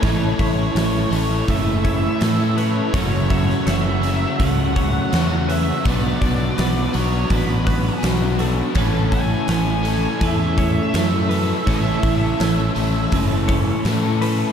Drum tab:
HH |o-o-o-o-o-o-o-o-|o-o-o-o-o-o-o-o-|o-o-o-o-o-o-o-o-|o-o-o-o-o-o-o-o-|
SD |----o-------o---|---oo-------o---|----o-------o---|----o-------o---|
BD |o-o-----o-o-----|o-o-----o-o-----|o-o-----o-o-----|o-o-----o-o-----|

HH |o-o-o-o-o-o-o-o-|
SD |----o-------o---|
BD |o-o-----o-o-----|